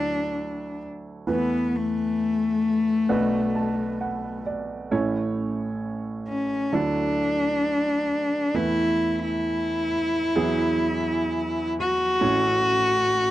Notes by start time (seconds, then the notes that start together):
Already playing: D2 D3 F#3 D4 E4 A4
1.27 E2 E3 A3 B3 E4 B4
1.76 A3
3.09 B1 B2 A3 D4 F#4 B4
3.55 A5
4.01 F#5
4.46 D5
4.91 A1 A2 A3 C#4 E4 C#5
6.28 C#4
6.72 D2 D3 F#3 D4 E4 A4
8.54 E2 E3 A3 B3 E4 B4
9.24 E4
10.36 E2 F#3 B3 E4 G#4
11.80 F#4
12.21 A1 A2 A3 C#4 E4 C#5